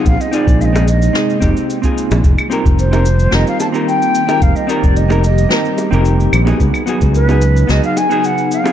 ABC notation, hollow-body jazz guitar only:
X:1
M:4/4
L:1/16
Q:1/4=110
K:Bb
V:1 name="Hollow-body jazz guitar"
[CEF_A]2 [CEFA]3 [CEFA] z2 [CEFA]2 [CEFG]3 [CEFA]3 | z2 [CEGB]3 [CEGB] z2 [CEGB]3 [CEGB]4 [CEGB]- | [CEGB]2 [CEGB]3 [CEGB] z2 [CEGB]3 [CEGB]4 [=B,E_G_A]- | [=B,E_G_A]2 [_CEGA]3 [CEGA] z2 [CEGA]3 [CEGA]4 [=CEFA] |]